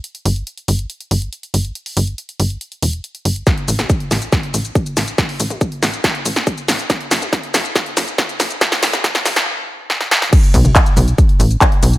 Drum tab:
CC |----------------|----------------|----------------|----------------|
HH |xxoxxxoxxxoxxxox|xooxxxoxxxoxxxox|xxoxxxoxxxoxxxox|xooxxxoxxxoxxxox|
SH |----------------|----------------|x-xxx-xxx-xxxxxx|x-xxx-xxx-xxxxxx|
CP |----------------|----------------|----------------|----------------|
SD |----------------|----------------|o--o--o-o-----o-|o-----o-o--o--o-|
T2 |----------------|----------------|---o--o---------|---o--o---------|
BD |----------------|----------------|o---o---o---o---|o---o---o---o---|

CC |----------------|----------------|x---------------|
HH |xxoxxxoxxxoxxxox|xooxxxox--------|xxoxxxoxxxoxxxox|
SH |x-xxx-xxx-xxxxxx|xxxxxxxx--------|x-xxxxxxx-xxx-xx|
CP |----------------|----------------|----x-------x---|
SD |o-o-o-o-o-o-o-o-|oooooooo----oooo|----------------|
T2 |---o--o---------|---o--o---------|---o--o---------|
BD |o---o---o---o---|o---o-----------|o-o-o---o---o---|